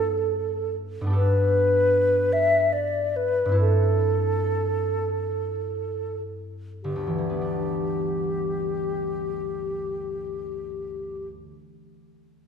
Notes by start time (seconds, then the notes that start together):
Already playing: G2 B3 D#4 F4 A4 B4
1.01 G2 B3
1.06 D4 G4
1.13 A4 B4
2.33 E5
2.73 D5
3.16 B4
3.45 G2 C4
3.52 E4 A4
3.60 A4
6.83 G1 G4
6.96 D2
7.07 E3
7.18 G3
7.30 B3
7.41 D4